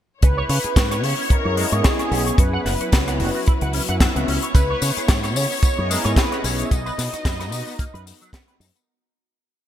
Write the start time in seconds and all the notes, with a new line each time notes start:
0.22 C#2 B3 C#4 E4 B4 C#5, kick, closed hi-hat
0.37 C#5
0.49 C#3 C#5, open hi-hat
0.64 G#4, muted fingered electric bass stroke, closed hi-hat
0.76 G#2 C#5, kick, snare, closed hi-hat
0.91 C#5, cross-stick, closed hi-hat
1.03 C#3 C#4 C#5, open hi-hat
1.17 B3 C#4 E4 G#4 D#5
1.30 B3 A#4, muted fingered electric bass stroke, kick, closed hi-hat
1.45 F#2 C#5
1.57 G#3, open hi-hat
1.72 G#2 C#5, closed hi-hat
1.84 G#4 C#5, kick, snare, closed hi-hat
1.99 C#5, cross-stick, closed hi-hat
2.11 B1 C#4, open hi-hat
2.26 C#5, closed hi-hat
2.38 F#2 F#3 F#4 B4, kick, closed hi-hat
2.53 F#5
2.65 F#1 F#5, snare, open hi-hat
2.80 C#5, muted fingered electric bass stroke, closed hi-hat
2.92 C#2 F#5, kick, snare, closed hi-hat
3.08 F#5, cross-stick, closed hi-hat
3.20 F#1 F#4, open hi-hat
3.35 F#4
3.46 E4, kick, closed hi-hat
3.61 C#2 F#5, closed hi-hat
3.73 C#4, open hi-hat
3.88 F#2 F#5, closed hi-hat
4.00 F#5, kick, snare, closed hi-hat
4.16 C#2 F#5, closed hi-hat
4.28 C#2 B3 C#4 C#5, open hi-hat
4.42 C#5, closed hi-hat
4.55 C#2 C#4 B4, kick, closed hi-hat, tambourine
4.70 C#5
4.82 C#3 C#5, open hi-hat, tambourine
4.97 G#4, muted fingered electric bass stroke, closed hi-hat, tambourine
5.08 G#2 C#5, kick, snare, closed hi-hat, tambourine
5.23 C#5, cross-stick, closed hi-hat, tambourine
5.36 C#3 C#4 C#5, open hi-hat, tambourine
5.50 B3 C#4 E4 G#4 D#5, tambourine
5.62 B3, muted fingered electric bass stroke, kick, closed hi-hat, tambourine
5.78 F#2 C#5
5.90 G#3 A#4, open hi-hat, tambourine
6.05 G#2 C#5, closed hi-hat, tambourine
6.16 B4 C#5, kick, snare, closed hi-hat, tambourine
6.32 C#5, cross-stick, closed hi-hat
6.44 B1 C#4 C#5, open hi-hat, tambourine
6.58 C#5, closed hi-hat, tambourine
6.65 E5
6.71 B1 B3 D#4 D#5, kick, closed hi-hat, tambourine
6.86 B4, tambourine
6.98 B2 B4, snare, open hi-hat, tambourine
7.13 F#4, muted fingered electric bass stroke, closed hi-hat, tambourine
7.25 F#2 B4, kick, snare, closed hi-hat, tambourine
7.39 B4, cross-stick, closed hi-hat, tambourine
7.52 B2 B3, open hi-hat, tambourine
7.67 B3, tambourine
7.79 A#3, kick, closed hi-hat, tambourine
7.94 F#2 B4, closed hi-hat
8.06 B3, open hi-hat, tambourine
8.21 F#3, closed hi-hat, tambourine
8.33 B3, kick, snare, closed hi-hat, tambourine
8.48 B4, closed hi-hat
8.60 F#2 D#4, open hi-hat, tambourine
8.75 B3, closed hi-hat, tambourine